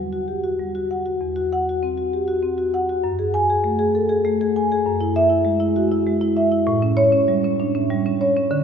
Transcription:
0.00 1.17 E2 medium
0.00 0.22 G3 soft
0.13 0.38 F#4 soft
0.28 0.44 G4 soft
0.44 0.69 F#4 medium
0.60 0.84 G3 soft
0.75 1.00 F#4 medium
0.91 1.15 F#5 medium
1.06 1.21 F#4 medium
1.21 2.99 E2 medium
1.36 1.61 F#4 medium
1.53 1.76 F#5 medium
1.69 1.92 F#4 medium
1.83 2.07 C4 medium
1.98 2.22 F#4 medium
2.13 2.28 G4 medium
2.28 2.52 F#4 medium
2.43 2.67 C4 medium
2.58 2.82 F#4 medium
2.74 2.98 F#5 medium
2.89 3.04 F#4 medium
3.04 4.82 F#2 medium
3.19 3.43 G#4 medium
3.34 3.58 G#5 medium
3.50 3.74 G#4 medium
3.64 3.88 A3 medium
3.79 4.03 G#4 medium
3.95 4.10 A4 medium
4.09 4.34 G#4 medium
4.25 4.50 A3 medium
4.41 4.65 G#4 medium
4.56 4.80 G#5 medium
4.72 4.87 G#4 medium
4.87 6.64 F#2 medium
5.01 5.25 E4 medium
5.16 5.41 E5 medium
5.30 5.55 E4 medium
5.45 5.70 G#3 medium
5.60 5.85 E4 medium
5.76 5.92 F#4 medium
5.92 6.16 E4 medium
6.07 6.31 G#3 medium
6.21 6.46 E4 medium
6.37 6.61 E5 medium
6.52 6.67 E4 medium
6.67 8.46 A2 medium
6.82 7.07 C#4 medium
6.97 7.22 C#5 loud
7.12 7.37 C#4 medium
7.28 7.53 G3 medium
7.44 7.68 C#4 medium
7.60 7.75 D4 medium
7.75 7.99 C#4 medium
7.90 8.14 G3 medium
8.06 8.30 C#4 medium
8.21 8.45 C#5 medium
8.37 8.51 C#4 medium
8.51 8.64 D3 medium

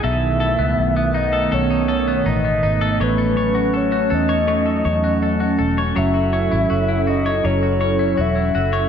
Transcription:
0.00 1.50 B2 medium
0.00 0.11 E3 medium
0.00 0.43 B3 soft
0.00 0.43 D#4 medium
0.00 0.40 A4 medium
0.04 0.57 B1 medium
0.04 2.98 D#3 medium
0.04 5.93 A3 medium
0.04 2.98 B3 medium
0.04 1.18 E5 loud
0.40 1.32 A4 medium
0.59 0.77 C#2 medium
0.59 0.96 B3 medium
0.78 1.49 B1 medium
0.96 2.07 B3 medium
1.14 1.69 D#4 medium
1.14 1.55 D#5 loud
1.33 1.52 A4 medium
1.51 2.23 B1 medium
1.51 3.07 B2 medium
1.51 1.88 A4 medium
1.51 2.30 C#5 medium
1.70 2.25 D#4 soft
1.88 2.81 A4 medium
2.08 2.44 B3 soft
2.26 2.61 A1 medium
2.26 2.62 D#4 medium
2.26 3.02 D#5 loud
2.44 3.21 B3 soft
2.63 2.99 G#1 medium
2.63 3.08 D#4 soft
2.81 3.01 A4 medium
3.00 4.07 A1 loud
3.00 8.89 F#3 medium
3.00 4.47 A3 medium
3.00 8.89 C#4 medium
3.00 3.78 B4 medium
3.00 3.36 C#5 medium
3.18 3.73 A4 medium
3.37 4.29 C#5 medium
3.55 3.92 F#4 medium
3.74 4.10 A4 medium
3.74 4.16 C#5 medium
3.92 5.03 F#4 medium
4.10 4.82 E2 medium
4.10 4.65 A4 medium
4.14 5.61 D#5 medium
4.29 4.48 C#5 medium
4.47 5.95 A3 medium
4.47 4.85 C#5 medium
4.66 5.22 A4 soft
4.85 5.56 E2 medium
4.85 5.78 C#5 medium
5.04 5.40 F#4 soft
5.23 5.58 A4 medium
5.40 6.14 F#4 soft
5.59 5.95 E1 medium
5.59 6.13 A4 soft
5.78 5.96 C#5 medium
5.96 6.50 F#1 medium
5.96 7.43 F#3 medium
5.96 8.89 E4 medium
5.96 8.89 A4 medium
5.96 6.32 C#5 medium
5.96 7.11 E5 loud
6.14 6.69 F#4 medium
6.33 7.25 C#5 medium
6.52 6.70 G#1 medium
6.52 6.88 E4 medium
6.70 7.41 F#1 medium
6.70 7.06 F#4 medium
6.70 8.17 C#5 medium
6.88 7.99 E4 medium
7.07 7.61 F#4 medium
7.07 7.47 D#5 medium
7.26 7.44 C#5 medium
7.44 8.15 F#1 medium
7.44 8.89 F#3 medium
7.44 7.79 C#5 medium
7.44 8.22 C#5 loud
7.63 8.16 F#4 medium
7.81 8.72 C#5 medium
7.99 8.35 E4 soft
8.18 8.54 E1 medium
8.18 8.54 F#4 medium
8.18 8.89 E5 medium
8.36 8.89 E4 medium
8.55 8.89 F#1 medium
8.55 8.89 F#4 medium
8.73 8.89 C#5 medium

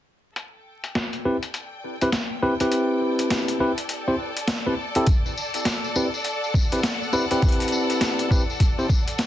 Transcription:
0.36 9.27 A4 medium
0.36 closed hi-hat medium
0.54 5.99 G5 medium
0.84 closed hi-hat soft
0.95 9.27 D5 medium
0.95 snare loud
0.95 closed hi-hat medium
1.13 closed hi-hat soft
1.25 1.36 C4 medium
1.25 1.36 E4 medium
1.25 1.36 G4 medium
1.25 1.36 B4 medium
1.43 closed hi-hat medium
1.54 closed hi-hat medium
2.01 2.09 C4 medium
2.01 2.09 E4 medium
2.01 2.09 G4 medium
2.01 2.09 B4 loud
2.01 closed hi-hat medium
2.12 snare loud
2.12 closed hi-hat medium
2.43 2.53 C4 medium
2.43 2.53 E4 medium
2.43 2.53 G4 medium
2.43 2.53 B4 loud
2.60 3.58 C4 medium
2.60 3.57 E4 medium
2.60 3.58 G4 medium
2.60 3.57 B4 medium
2.60 closed hi-hat medium
2.72 closed hi-hat medium
3.19 closed hi-hat medium
3.30 snare loud
3.30 closed hi-hat medium
3.48 closed hi-hat soft
3.60 3.71 C4 medium
3.60 3.71 E4 medium
3.60 3.71 G4 medium
3.60 3.71 B4 medium
3.78 closed hi-hat medium
3.89 closed hi-hat medium
4.08 4.15 C4 medium
4.08 4.15 E4 medium
4.08 4.15 G4 medium
4.08 4.15 C5 medium
4.37 closed hi-hat medium
4.48 snare loud
4.48 closed hi-hat medium
4.66 4.73 C4 medium
4.66 4.73 E4 medium
4.66 4.73 G4 medium
4.66 4.73 B4 medium
4.95 5.07 C4 loud
4.95 5.07 E4 medium
4.95 5.07 G4 medium
4.95 5.07 A4 loud
4.95 closed hi-hat medium
5.07 kick loud
5.07 closed hi-hat medium
5.07 tambourine medium
5.26 tambourine soft
5.38 tambourine medium
5.54 closed hi-hat medium
5.54 tambourine soft
5.65 snare loud
5.65 closed hi-hat medium
5.65 tambourine medium
5.84 9.27 F#5 medium
5.84 tambourine soft
5.96 6.07 C4 medium
5.96 6.07 E4 medium
5.96 6.07 G4 medium
5.96 6.07 B4 medium
5.96 tambourine medium
6.14 tambourine soft
6.24 closed hi-hat medium
6.24 tambourine medium
6.44 tambourine soft
6.54 kick loud
6.54 tambourine medium
6.72 6.79 C4 medium
6.72 6.79 E4 medium
6.72 6.79 G4 medium
6.72 6.79 B4 loud
6.72 closed hi-hat medium
6.72 tambourine soft
6.83 snare loud
6.83 closed hi-hat medium
6.83 tambourine soft
7.03 tambourine soft
7.13 7.24 C4 medium
7.13 7.24 E4 medium
7.13 7.24 G4 medium
7.13 7.24 B4 loud
7.13 tambourine medium
7.31 8.28 C4 medium
7.31 8.28 E4 medium
7.31 8.28 G4 medium
7.31 8.28 B4 loud
7.31 closed hi-hat medium
7.31 tambourine soft
7.42 kick loud
7.42 closed hi-hat soft
7.42 tambourine soft
7.49 closed hi-hat soft
7.52 closed hi-hat soft
7.60 closed hi-hat soft
7.60 tambourine soft
7.62 closed hi-hat soft
7.68 closed hi-hat medium
7.72 tambourine medium
7.90 closed hi-hat soft
7.90 tambourine soft
8.01 snare loud
8.01 closed hi-hat medium
8.01 tambourine medium
8.19 closed hi-hat soft
8.19 tambourine soft
8.31 8.42 C4 medium
8.31 8.42 E4 medium
8.31 8.42 G4 medium
8.31 8.42 B4 medium
8.31 kick medium
8.31 tambourine loud
8.50 tambourine soft
8.60 kick medium
8.60 closed hi-hat medium
8.60 tambourine soft
8.79 8.85 C4 medium
8.79 8.85 E4 medium
8.79 8.85 G4 medium
8.79 8.85 C5 medium
8.79 tambourine soft
8.89 kick loud
8.89 tambourine medium
9.08 closed hi-hat soft
9.08 tambourine soft
9.18 snare loud
9.18 closed hi-hat medium
9.18 tambourine medium

